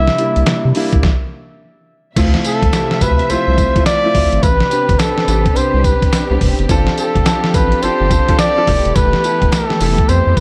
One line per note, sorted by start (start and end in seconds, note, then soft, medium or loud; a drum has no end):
0.00 0.10 C2 medium
0.00 1.00 C3 medium
0.00 0.18 G3 medium
0.00 0.19 A#3 medium
0.00 1.00 A#3 medium
0.00 0.19 D4 medium
0.00 0.20 E4 loud
0.00 1.00 E4 medium
0.00 1.05 G4 loud
0.00 0.75 E5 loud
0.08 snare medium
0.18 0.57 G3 medium
0.18 0.57 A#3 medium
0.18 0.58 D4 medium
0.18 0.58 E4 medium
0.18 closed hi-hat medium
0.36 0.44 C2 medium
0.36 closed hi-hat medium
0.46 0.54 C3 soft
0.46 snare loud
0.46 closed hi-hat medium
0.46 cowbell medium
0.65 0.72 C3 loud
0.75 1.03 G3 medium
0.75 1.03 A#3 medium
0.75 1.03 D4 medium
0.75 1.03 E4 loud
0.75 open hi-hat medium
0.92 1.00 C2 medium
0.92 kick loud
0.92 closed hi-hat soft
1.03 kick loud
1.03 snare medium
2.16 2.37 D2 loud
2.16 4.40 C3 medium
2.16 4.40 F3 medium
2.16 2.56 A3 loud
2.16 2.56 C4 medium
2.16 2.56 E4 medium
2.16 2.56 F4 loud
2.16 4.40 E5 medium
2.16 kick loud
2.16 closed hi-hat medium
2.16 crash loud
2.16 tambourine medium
2.16 cowbell medium
2.34 snare medium
2.45 3.03 A4 loud
2.45 closed hi-hat medium
2.45 tambourine medium
2.63 2.70 C2 medium
2.63 kick loud
2.63 closed hi-hat medium
2.73 3.12 A3 medium
2.73 3.12 C4 medium
2.73 3.12 E4 medium
2.73 3.13 G4 medium
2.73 snare loud
2.73 closed hi-hat medium
2.73 tambourine medium
2.73 cowbell medium
2.91 snare medium
3.01 3.21 D2 loud
3.01 3.32 B4 loud
3.01 kick loud
3.01 closed hi-hat medium
3.01 tambourine medium
3.01 cowbell medium
3.19 closed hi-hat medium
3.30 3.37 C2 medium
3.30 3.51 A3 medium
3.30 3.51 C4 medium
3.30 3.51 E4 medium
3.30 3.51 F4 medium
3.30 3.86 C5 loud
3.30 closed hi-hat medium
3.30 tambourine medium
3.30 cowbell medium
3.48 3.68 C2 medium
3.58 3.69 A3 medium
3.58 3.70 C4 medium
3.58 3.70 E4 medium
3.58 3.70 F4 medium
3.58 kick loud
3.58 closed hi-hat medium
3.58 tambourine medium
3.76 3.92 A3 medium
3.76 3.92 C4 medium
3.76 3.92 E4 medium
3.76 3.92 F4 loud
3.76 kick loud
3.76 closed hi-hat medium
3.86 4.44 D5 loud
3.86 snare loud
3.86 closed hi-hat medium
3.86 tambourine medium
3.86 cowbell medium
4.04 4.43 A3 medium
4.04 4.43 C4 medium
4.04 4.43 E4 medium
4.04 4.43 F4 loud
4.15 4.27 D2 loud
4.15 kick loud
4.15 open hi-hat medium
4.32 4.40 G#1 medium
4.32 closed hi-hat medium
4.42 4.63 A1 loud
4.42 6.67 C3 medium
4.42 6.67 D4 medium
4.42 10.40 G4 medium
4.42 6.67 B4 medium
4.42 5.01 B4 loud
4.42 kick loud
4.42 closed hi-hat medium
4.42 tambourine medium
4.42 cowbell medium
4.60 snare medium
4.71 5.10 B3 medium
4.71 5.10 C4 medium
4.71 5.11 D4 medium
4.71 5.11 G4 medium
4.71 closed hi-hat medium
4.71 tambourine medium
4.89 4.96 G1 medium
4.89 kick loud
4.89 closed hi-hat medium
4.99 5.58 A4 loud
4.99 snare loud
4.99 closed hi-hat medium
4.99 tambourine medium
4.99 cowbell medium
5.18 snare medium
5.28 5.48 A1 loud
5.28 5.94 B3 medium
5.28 5.95 C4 medium
5.28 5.95 D4 medium
5.28 5.95 G4 medium
5.28 closed hi-hat medium
5.28 tambourine medium
5.28 cowbell medium
5.46 kick loud
5.46 closed hi-hat medium
5.56 5.63 C2 soft
5.56 5.86 C5 loud
5.56 closed hi-hat medium
5.56 tambourine medium
5.56 cowbell medium
5.74 5.94 C2 medium
5.84 6.41 B4 medium
5.84 kick loud
5.84 closed hi-hat medium
5.84 tambourine medium
6.02 kick loud
6.02 closed hi-hat medium
6.12 snare loud
6.12 closed hi-hat medium
6.12 tambourine medium
6.12 cowbell medium
6.31 6.38 C2 medium
6.31 6.58 B3 medium
6.31 6.58 C4 medium
6.31 6.58 D4 medium
6.31 6.58 G4 medium
6.41 6.54 F1 loud
6.41 kick loud
6.41 open hi-hat medium
6.59 6.66 F#1 medium
6.59 closed hi-hat medium
6.69 6.89 G1 loud
6.69 8.66 F3 medium
6.69 7.08 C4 loud
6.69 8.66 C4 medium
6.69 7.09 D4 medium
6.69 7.09 F4 loud
6.69 7.09 A4 loud
6.69 kick loud
6.69 closed hi-hat medium
6.69 tambourine medium
6.69 cowbell medium
6.87 snare medium
6.98 7.56 A4 loud
6.98 closed hi-hat medium
6.98 tambourine medium
7.15 7.23 F1 loud
7.15 kick loud
7.15 closed hi-hat medium
7.26 7.65 C4 medium
7.26 7.65 D4 medium
7.26 7.65 F4 medium
7.26 7.66 A4 medium
7.26 snare loud
7.26 closed hi-hat medium
7.26 tambourine medium
7.26 cowbell medium
7.44 snare medium
7.54 7.74 A1 medium
7.54 7.84 B4 loud
7.54 kick loud
7.54 closed hi-hat medium
7.54 tambourine medium
7.54 cowbell medium
7.72 closed hi-hat soft
7.82 7.90 G1 soft
7.82 8.04 C4 medium
7.82 8.04 D4 medium
7.82 8.04 F4 medium
7.82 8.04 A4 medium
7.82 8.39 C5 loud
7.82 closed hi-hat medium
7.82 tambourine medium
7.82 cowbell medium
8.01 8.20 G1 loud
8.11 8.22 C4 medium
8.11 8.22 D4 medium
8.11 8.23 F4 medium
8.11 8.23 A4 medium
8.11 kick loud
8.11 closed hi-hat medium
8.11 tambourine medium
8.28 8.44 C4 medium
8.28 8.44 D4 medium
8.28 8.45 F4 medium
8.28 8.45 A4 loud
8.28 kick loud
8.28 closed hi-hat medium
8.39 8.97 D5 loud
8.39 snare loud
8.39 closed hi-hat medium
8.39 tambourine medium
8.39 cowbell medium
8.57 8.67 C4 medium
8.57 8.68 D4 medium
8.57 8.68 F4 medium
8.57 8.67 A4 loud
8.67 8.80 F1 loud
8.67 10.40 E3 medium
8.67 10.40 A3 medium
8.67 9.15 B3 medium
8.67 10.40 B3 medium
8.67 9.16 E4 medium
8.67 9.16 G4 medium
8.67 9.16 A4 medium
8.67 kick loud
8.67 open hi-hat medium
8.85 8.93 E1 medium
8.85 closed hi-hat medium
8.96 9.16 F1 loud
8.96 9.54 B4 loud
8.96 kick loud
8.96 closed hi-hat medium
8.96 tambourine medium
8.96 cowbell medium
9.13 snare medium
9.24 9.63 B3 medium
9.24 9.63 E4 medium
9.24 9.63 G4 medium
9.24 9.63 A4 medium
9.24 closed hi-hat medium
9.24 tambourine medium
9.42 9.49 E1 loud
9.42 kick loud
9.42 closed hi-hat medium
9.52 10.11 A4 loud
9.52 snare loud
9.52 closed hi-hat medium
9.52 tambourine medium
9.52 cowbell medium
9.70 snare medium
9.80 10.01 F1 loud
9.80 10.40 B3 medium
9.80 10.40 E4 medium
9.80 10.40 G4 medium
9.80 10.40 A4 medium
9.80 open hi-hat medium
9.80 tambourine medium
9.80 cowbell medium
9.98 kick loud
9.98 closed hi-hat soft
10.09 10.22 F2 loud
10.09 10.39 C5 loud
10.09 closed hi-hat medium
10.09 tambourine medium
10.09 cowbell medium
10.27 10.34 F2 loud
10.37 kick loud
10.37 closed hi-hat medium
10.37 tambourine medium